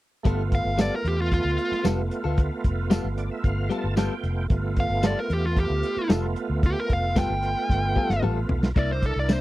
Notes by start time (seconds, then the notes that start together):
0.23 G1 G3 A3 B3 F4 A4, kick, closed hi-hat
0.52 F5, kick, closed hi-hat
0.65 G1
0.78 G3 B3 F4 A4 D5, snare, closed hi-hat, tambourine
0.96 A#4
1.05 E2 G4, closed hi-hat
1.22 F4
1.32 F4, kick, closed hi-hat
1.45 D2
1.58 closed hi-hat
1.71 muted fingered electric bass stroke, snare
1.84 F1 G3 B3 F4 A4, snare, closed hi-hat, tambourine
2.11 closed hi-hat
2.24 D2 B3 F4 A4
2.38 kick, closed hi-hat
2.64 F1, kick, closed hi-hat
2.90 G3 B3 F4 A4, snare, closed hi-hat, tambourine
3.04 G1
3.17 D5, closed hi-hat
3.31 E5
3.44 G1 F5, kick, closed hi-hat
3.70 G3 B3 F4 A4 A5, closed hi-hat
3.84 G1
3.97 G3 B3 F4 A4 G5, snare, closed hi-hat, tambourine
4.23 F1, closed hi-hat
4.48 G1 A3 B3 F4, kick, closed hi-hat
4.76 F5, kick, closed hi-hat
4.90 G1
5.03 G3 B3 F4 A4 D5, snare, closed hi-hat, tambourine
5.20 A#4
5.30 E2 G4, closed hi-hat
5.47 F4
5.57 G4, kick, closed hi-hat
5.70 D2
5.83 closed hi-hat
5.97 muted fingered electric bass stroke
6.09 F1 G3 B3 F4 A4, snare, closed hi-hat, tambourine
6.36 closed hi-hat
6.50 D2
6.63 G4, kick, closed hi-hat
6.80 A#4
6.90 F1 F5, kick, closed hi-hat
7.16 G3 B3 F4 A4 G5, kick, snare, closed hi-hat, tambourine
7.30 G1
7.43 closed hi-hat
7.70 G1, kick, snare
7.95 G3 B3 F4 A4, kick
8.10 G1, snare
8.22 A1 G3 B3 F4 A4, mid tom
8.49 B1, floor tom
8.63 snare
8.74 C2 C3 A#3 D4 E4 A#4, kick, closed hi-hat
8.79 D5
8.92 C5
9.02 A4, kick, closed hi-hat
9.16 C2 D5
9.28 C3 A#3 D4 E4, snare, closed hi-hat, tambourine
9.33 C5